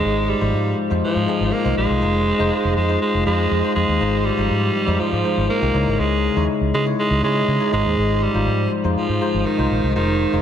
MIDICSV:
0, 0, Header, 1, 5, 480
1, 0, Start_track
1, 0, Key_signature, -4, "major"
1, 0, Tempo, 495868
1, 43, Time_signature, 4, 2, 24, 8
1, 10085, End_track
2, 0, Start_track
2, 0, Title_t, "Tine electric piano"
2, 0, Program_c, 0, 4
2, 0, Note_on_c, 0, 44, 64
2, 0, Note_on_c, 0, 56, 79
2, 0, Note_on_c, 0, 63, 72
2, 0, Note_on_c, 0, 65, 73
2, 0, Note_on_c, 0, 72, 86
2, 3, Control_c, 0, 64, 127
2, 291, Note_off_c, 0, 56, 0
2, 293, Note_off_c, 0, 63, 0
2, 294, Note_off_c, 0, 65, 0
2, 297, Note_off_c, 0, 72, 0
2, 392, Note_on_c, 0, 53, 74
2, 395, Note_on_c, 0, 63, 63
2, 401, Note_on_c, 0, 65, 67
2, 404, Note_on_c, 0, 72, 83
2, 482, Note_off_c, 0, 44, 0
2, 792, Note_off_c, 0, 53, 0
2, 793, Note_off_c, 0, 63, 0
2, 796, Note_off_c, 0, 65, 0
2, 797, Note_off_c, 0, 72, 0
2, 871, Note_on_c, 0, 56, 69
2, 875, Note_on_c, 0, 63, 64
2, 880, Note_on_c, 0, 65, 64
2, 883, Note_on_c, 0, 72, 75
2, 1172, Note_off_c, 0, 56, 0
2, 1174, Note_off_c, 0, 63, 0
2, 1177, Note_off_c, 0, 65, 0
2, 1178, Note_off_c, 0, 72, 0
2, 1230, Note_on_c, 0, 56, 74
2, 1234, Note_on_c, 0, 63, 64
2, 1239, Note_on_c, 0, 65, 67
2, 1243, Note_on_c, 0, 68, 74
2, 1532, Note_off_c, 0, 56, 0
2, 1534, Note_off_c, 0, 63, 0
2, 1536, Note_off_c, 0, 65, 0
2, 1538, Note_off_c, 0, 68, 0
2, 1589, Note_on_c, 0, 56, 66
2, 1593, Note_on_c, 0, 63, 65
2, 1597, Note_on_c, 0, 65, 63
2, 1601, Note_on_c, 0, 72, 75
2, 1891, Note_off_c, 0, 56, 0
2, 1894, Note_off_c, 0, 63, 0
2, 1895, Note_off_c, 0, 65, 0
2, 1897, Note_off_c, 0, 72, 0
2, 1950, Note_on_c, 0, 56, 67
2, 1953, Note_on_c, 0, 63, 64
2, 1957, Note_on_c, 0, 65, 62
2, 1960, Note_on_c, 0, 72, 75
2, 1977, Control_c, 0, 64, 0
2, 2142, Control_c, 0, 64, 127
2, 2252, Note_off_c, 0, 56, 0
2, 2253, Note_off_c, 0, 63, 0
2, 2255, Note_off_c, 0, 65, 0
2, 2257, Note_off_c, 0, 72, 0
2, 2309, Note_on_c, 0, 56, 84
2, 2313, Note_on_c, 0, 63, 81
2, 2319, Note_on_c, 0, 65, 75
2, 2322, Note_on_c, 0, 72, 94
2, 2710, Note_off_c, 0, 56, 0
2, 2712, Note_off_c, 0, 63, 0
2, 2715, Note_off_c, 0, 65, 0
2, 2716, Note_off_c, 0, 72, 0
2, 2793, Note_on_c, 0, 56, 67
2, 2797, Note_on_c, 0, 63, 64
2, 2799, Note_on_c, 0, 65, 66
2, 2803, Note_on_c, 0, 72, 79
2, 3093, Note_off_c, 0, 56, 0
2, 3095, Note_off_c, 0, 63, 0
2, 3096, Note_off_c, 0, 65, 0
2, 3098, Note_off_c, 0, 72, 0
2, 3154, Note_on_c, 0, 56, 72
2, 3158, Note_on_c, 0, 63, 65
2, 3162, Note_on_c, 0, 65, 66
2, 3165, Note_on_c, 0, 72, 78
2, 3454, Note_off_c, 0, 56, 0
2, 3456, Note_off_c, 0, 63, 0
2, 3458, Note_off_c, 0, 65, 0
2, 3459, Note_off_c, 0, 72, 0
2, 3517, Note_on_c, 0, 56, 66
2, 3520, Note_on_c, 0, 63, 62
2, 3525, Note_on_c, 0, 65, 61
2, 3528, Note_on_c, 0, 72, 76
2, 3815, Note_off_c, 0, 56, 0
2, 3817, Note_off_c, 0, 63, 0
2, 3819, Note_off_c, 0, 65, 0
2, 3821, Note_off_c, 0, 72, 0
2, 3872, Note_on_c, 0, 56, 72
2, 3877, Note_on_c, 0, 63, 62
2, 3879, Note_on_c, 0, 44, 63
2, 3881, Note_on_c, 0, 65, 66
2, 3885, Note_on_c, 0, 72, 77
2, 3893, Control_c, 0, 64, 0
2, 4083, Control_c, 0, 64, 127
2, 4173, Note_off_c, 0, 56, 0
2, 4175, Note_off_c, 0, 63, 0
2, 4177, Note_off_c, 0, 65, 0
2, 4179, Note_off_c, 0, 72, 0
2, 4232, Note_on_c, 0, 53, 72
2, 4236, Note_on_c, 0, 63, 68
2, 4239, Note_on_c, 0, 65, 65
2, 4245, Note_on_c, 0, 72, 81
2, 4562, Note_off_c, 0, 44, 0
2, 4631, Note_off_c, 0, 53, 0
2, 4633, Note_off_c, 0, 63, 0
2, 4635, Note_off_c, 0, 65, 0
2, 4638, Note_off_c, 0, 72, 0
2, 4711, Note_on_c, 0, 56, 70
2, 4716, Note_on_c, 0, 63, 66
2, 4718, Note_on_c, 0, 65, 67
2, 4722, Note_on_c, 0, 72, 76
2, 5012, Note_off_c, 0, 56, 0
2, 5015, Note_off_c, 0, 63, 0
2, 5016, Note_off_c, 0, 65, 0
2, 5018, Note_off_c, 0, 72, 0
2, 5073, Note_on_c, 0, 56, 68
2, 5078, Note_on_c, 0, 63, 63
2, 5083, Note_on_c, 0, 65, 62
2, 5085, Note_on_c, 0, 72, 80
2, 5373, Note_off_c, 0, 56, 0
2, 5376, Note_off_c, 0, 63, 0
2, 5378, Note_off_c, 0, 65, 0
2, 5380, Note_off_c, 0, 72, 0
2, 5433, Note_on_c, 0, 56, 68
2, 5437, Note_on_c, 0, 63, 62
2, 5441, Note_on_c, 0, 65, 65
2, 5446, Note_on_c, 0, 67, 70
2, 5540, Note_off_c, 0, 56, 0
2, 5543, Note_off_c, 0, 63, 0
2, 5552, Note_on_c, 0, 56, 78
2, 5555, Note_on_c, 0, 63, 73
2, 5557, Note_on_c, 0, 49, 66
2, 5559, Note_on_c, 0, 64, 69
2, 5562, Note_off_c, 0, 65, 0
2, 5563, Note_on_c, 0, 73, 83
2, 5564, Note_off_c, 0, 67, 0
2, 5576, Control_c, 0, 64, 0
2, 5729, Control_c, 0, 64, 127
2, 6050, Note_off_c, 0, 56, 0
2, 6051, Note_off_c, 0, 63, 0
2, 6053, Note_off_c, 0, 64, 0
2, 6055, Note_off_c, 0, 73, 0
2, 6154, Note_on_c, 0, 56, 72
2, 6159, Note_on_c, 0, 63, 67
2, 6161, Note_on_c, 0, 64, 63
2, 6166, Note_on_c, 0, 73, 78
2, 6241, Note_off_c, 0, 49, 0
2, 6552, Note_off_c, 0, 56, 0
2, 6555, Note_off_c, 0, 63, 0
2, 6556, Note_off_c, 0, 64, 0
2, 6558, Note_off_c, 0, 73, 0
2, 6634, Note_on_c, 0, 56, 72
2, 6639, Note_on_c, 0, 63, 63
2, 6643, Note_on_c, 0, 64, 62
2, 6646, Note_on_c, 0, 73, 80
2, 6934, Note_off_c, 0, 56, 0
2, 6936, Note_off_c, 0, 63, 0
2, 6938, Note_off_c, 0, 64, 0
2, 6940, Note_off_c, 0, 73, 0
2, 6994, Note_on_c, 0, 56, 71
2, 6998, Note_on_c, 0, 63, 64
2, 7002, Note_on_c, 0, 64, 63
2, 7007, Note_on_c, 0, 73, 84
2, 7294, Note_off_c, 0, 56, 0
2, 7296, Note_off_c, 0, 63, 0
2, 7298, Note_off_c, 0, 64, 0
2, 7300, Note_off_c, 0, 73, 0
2, 7354, Note_on_c, 0, 56, 67
2, 7358, Note_on_c, 0, 63, 64
2, 7362, Note_on_c, 0, 64, 63
2, 7367, Note_on_c, 0, 73, 78
2, 7460, Note_off_c, 0, 56, 0
2, 7465, Note_off_c, 0, 63, 0
2, 7472, Note_on_c, 0, 56, 80
2, 7477, Note_on_c, 0, 63, 74
2, 7478, Note_on_c, 0, 44, 68
2, 7481, Note_on_c, 0, 65, 70
2, 7482, Note_off_c, 0, 64, 0
2, 7484, Note_on_c, 0, 72, 87
2, 7485, Note_off_c, 0, 73, 0
2, 7493, Control_c, 0, 64, 0
2, 7685, Control_c, 0, 64, 127
2, 7970, Note_off_c, 0, 56, 0
2, 7972, Note_off_c, 0, 63, 0
2, 7974, Note_off_c, 0, 65, 0
2, 7976, Note_off_c, 0, 72, 0
2, 8072, Note_on_c, 0, 53, 72
2, 8076, Note_on_c, 0, 63, 69
2, 8080, Note_on_c, 0, 65, 67
2, 8082, Note_on_c, 0, 72, 82
2, 8161, Note_off_c, 0, 44, 0
2, 8471, Note_off_c, 0, 53, 0
2, 8473, Note_off_c, 0, 63, 0
2, 8476, Note_off_c, 0, 65, 0
2, 8476, Note_off_c, 0, 72, 0
2, 8556, Note_on_c, 0, 56, 69
2, 8558, Note_on_c, 0, 63, 66
2, 8565, Note_on_c, 0, 65, 62
2, 8567, Note_on_c, 0, 72, 79
2, 8855, Note_off_c, 0, 56, 0
2, 8856, Note_off_c, 0, 63, 0
2, 8859, Note_off_c, 0, 65, 0
2, 8860, Note_off_c, 0, 72, 0
2, 8912, Note_on_c, 0, 56, 76
2, 8915, Note_on_c, 0, 63, 65
2, 8920, Note_on_c, 0, 65, 65
2, 8924, Note_on_c, 0, 72, 80
2, 9213, Note_off_c, 0, 56, 0
2, 9214, Note_off_c, 0, 63, 0
2, 9217, Note_off_c, 0, 65, 0
2, 9219, Note_off_c, 0, 72, 0
2, 9275, Note_on_c, 0, 56, 66
2, 9279, Note_on_c, 0, 63, 63
2, 9283, Note_on_c, 0, 65, 63
2, 9286, Note_on_c, 0, 72, 77
2, 9574, Note_off_c, 0, 56, 0
2, 9576, Note_off_c, 0, 63, 0
2, 9578, Note_off_c, 0, 65, 0
2, 9580, Note_off_c, 0, 72, 0
2, 9634, Note_on_c, 0, 56, 68
2, 9638, Note_on_c, 0, 63, 63
2, 9641, Note_on_c, 0, 65, 65
2, 9646, Note_on_c, 0, 72, 79
2, 9655, Control_c, 0, 64, 0
2, 9811, Control_c, 0, 64, 127
2, 9934, Note_off_c, 0, 56, 0
2, 9936, Note_off_c, 0, 63, 0
2, 9937, Note_off_c, 0, 65, 0
2, 9940, Note_off_c, 0, 72, 0
2, 9993, Note_on_c, 0, 56, 71
2, 9997, Note_on_c, 0, 63, 65
2, 10000, Note_on_c, 0, 65, 63
2, 10005, Note_on_c, 0, 72, 82
2, 10085, Note_off_c, 0, 56, 0
2, 10085, Note_off_c, 0, 63, 0
2, 10085, Note_off_c, 0, 65, 0
2, 10085, Note_off_c, 0, 72, 0
2, 10085, End_track
3, 0, Start_track
3, 0, Title_t, "Alto saxophone"
3, 0, Program_c, 1, 65
3, 0, Note_on_c, 1, 56, 98
3, 283, Note_on_c, 1, 55, 89
3, 298, Note_off_c, 1, 56, 0
3, 741, Note_off_c, 1, 55, 0
3, 1004, Note_on_c, 1, 53, 101
3, 1479, Note_on_c, 1, 58, 102
3, 1493, Note_off_c, 1, 53, 0
3, 1712, Note_off_c, 1, 58, 0
3, 1718, Note_on_c, 1, 56, 110
3, 2641, Note_off_c, 1, 56, 0
3, 2673, Note_on_c, 1, 56, 92
3, 2900, Note_off_c, 1, 56, 0
3, 2919, Note_on_c, 1, 56, 98
3, 3143, Note_off_c, 1, 56, 0
3, 3156, Note_on_c, 1, 56, 101
3, 3605, Note_off_c, 1, 56, 0
3, 3630, Note_on_c, 1, 56, 96
3, 4117, Note_on_c, 1, 55, 107
3, 4132, Note_off_c, 1, 56, 0
3, 4836, Note_on_c, 1, 53, 91
3, 4851, Note_off_c, 1, 55, 0
3, 5312, Note_off_c, 1, 53, 0
3, 5318, Note_on_c, 1, 58, 100
3, 5801, Note_on_c, 1, 56, 88
3, 5816, Note_off_c, 1, 58, 0
3, 6260, Note_off_c, 1, 56, 0
3, 6527, Note_on_c, 1, 56, 101
3, 6634, Note_off_c, 1, 56, 0
3, 6771, Note_on_c, 1, 56, 108
3, 6990, Note_off_c, 1, 56, 0
3, 7005, Note_on_c, 1, 56, 112
3, 7450, Note_off_c, 1, 56, 0
3, 7487, Note_on_c, 1, 56, 109
3, 7965, Note_on_c, 1, 55, 94
3, 7980, Note_off_c, 1, 56, 0
3, 8444, Note_off_c, 1, 55, 0
3, 8679, Note_on_c, 1, 53, 91
3, 9159, Note_on_c, 1, 51, 86
3, 9174, Note_off_c, 1, 53, 0
3, 9627, Note_off_c, 1, 51, 0
3, 9633, Note_on_c, 1, 51, 96
3, 10085, Note_off_c, 1, 51, 0
3, 10085, End_track
4, 0, Start_track
4, 0, Title_t, "Fingered electric bass"
4, 0, Program_c, 2, 33
4, 40, Note_on_c, 2, 32, 96
4, 311, Note_off_c, 2, 32, 0
4, 398, Note_on_c, 2, 32, 77
4, 490, Note_off_c, 2, 32, 0
4, 521, Note_on_c, 2, 44, 93
4, 702, Note_off_c, 2, 44, 0
4, 880, Note_on_c, 2, 41, 93
4, 971, Note_off_c, 2, 41, 0
4, 1119, Note_on_c, 2, 44, 100
4, 1210, Note_off_c, 2, 44, 0
4, 1358, Note_on_c, 2, 32, 80
4, 1450, Note_off_c, 2, 32, 0
4, 1598, Note_on_c, 2, 36, 86
4, 1690, Note_off_c, 2, 36, 0
4, 1716, Note_on_c, 2, 34, 82
4, 1809, Note_off_c, 2, 34, 0
4, 1839, Note_on_c, 2, 36, 90
4, 1930, Note_off_c, 2, 36, 0
4, 1959, Note_on_c, 2, 29, 97
4, 2230, Note_off_c, 2, 29, 0
4, 2318, Note_on_c, 2, 29, 82
4, 2409, Note_off_c, 2, 29, 0
4, 2560, Note_on_c, 2, 29, 91
4, 2651, Note_off_c, 2, 29, 0
4, 2681, Note_on_c, 2, 41, 96
4, 2862, Note_off_c, 2, 41, 0
4, 3043, Note_on_c, 2, 29, 91
4, 3133, Note_off_c, 2, 29, 0
4, 3163, Note_on_c, 2, 41, 92
4, 3342, Note_off_c, 2, 41, 0
4, 3400, Note_on_c, 2, 41, 93
4, 3491, Note_off_c, 2, 41, 0
4, 3640, Note_on_c, 2, 41, 84
4, 3731, Note_off_c, 2, 41, 0
4, 3759, Note_on_c, 2, 39, 83
4, 3850, Note_off_c, 2, 39, 0
4, 3878, Note_on_c, 2, 32, 97
4, 4150, Note_off_c, 2, 32, 0
4, 4240, Note_on_c, 2, 32, 79
4, 4331, Note_off_c, 2, 32, 0
4, 4358, Note_on_c, 2, 44, 97
4, 4540, Note_off_c, 2, 44, 0
4, 4716, Note_on_c, 2, 41, 86
4, 4808, Note_off_c, 2, 41, 0
4, 4958, Note_on_c, 2, 44, 98
4, 5049, Note_off_c, 2, 44, 0
4, 5201, Note_on_c, 2, 32, 84
4, 5291, Note_off_c, 2, 32, 0
4, 5440, Note_on_c, 2, 36, 90
4, 5531, Note_off_c, 2, 36, 0
4, 5559, Note_on_c, 2, 37, 97
4, 5650, Note_off_c, 2, 37, 0
4, 5680, Note_on_c, 2, 32, 83
4, 5771, Note_off_c, 2, 32, 0
4, 5799, Note_on_c, 2, 37, 103
4, 6070, Note_off_c, 2, 37, 0
4, 6159, Note_on_c, 2, 39, 84
4, 6250, Note_off_c, 2, 39, 0
4, 6397, Note_on_c, 2, 37, 93
4, 6489, Note_off_c, 2, 37, 0
4, 6519, Note_on_c, 2, 49, 89
4, 6700, Note_off_c, 2, 49, 0
4, 6878, Note_on_c, 2, 37, 96
4, 6969, Note_off_c, 2, 37, 0
4, 7000, Note_on_c, 2, 49, 92
4, 7181, Note_off_c, 2, 49, 0
4, 7240, Note_on_c, 2, 49, 94
4, 7331, Note_off_c, 2, 49, 0
4, 7481, Note_on_c, 2, 32, 99
4, 7571, Note_off_c, 2, 32, 0
4, 7599, Note_on_c, 2, 39, 88
4, 7690, Note_off_c, 2, 39, 0
4, 7721, Note_on_c, 2, 32, 103
4, 7991, Note_off_c, 2, 32, 0
4, 8078, Note_on_c, 2, 32, 81
4, 8197, Note_on_c, 2, 44, 100
4, 8211, Note_off_c, 2, 32, 0
4, 8379, Note_off_c, 2, 44, 0
4, 8560, Note_on_c, 2, 41, 84
4, 8651, Note_off_c, 2, 41, 0
4, 8798, Note_on_c, 2, 44, 93
4, 8889, Note_off_c, 2, 44, 0
4, 9039, Note_on_c, 2, 32, 93
4, 9130, Note_off_c, 2, 32, 0
4, 9279, Note_on_c, 2, 36, 84
4, 9370, Note_off_c, 2, 36, 0
4, 9399, Note_on_c, 2, 34, 85
4, 9490, Note_off_c, 2, 34, 0
4, 9521, Note_on_c, 2, 36, 88
4, 9611, Note_off_c, 2, 36, 0
4, 9640, Note_on_c, 2, 29, 94
4, 9911, Note_off_c, 2, 29, 0
4, 9999, Note_on_c, 2, 29, 87
4, 10085, Note_off_c, 2, 29, 0
4, 10085, End_track
5, 0, Start_track
5, 0, Title_t, "Muted fingered electric bass strokes"
5, 999, Note_on_c, 9, 29, 44
5, 1096, Note_off_c, 9, 29, 0
5, 4838, Note_on_c, 9, 29, 46
5, 4935, Note_off_c, 9, 29, 0
5, 8678, Note_on_c, 9, 29, 47
5, 8775, Note_off_c, 9, 29, 0
5, 10085, End_track
0, 0, End_of_file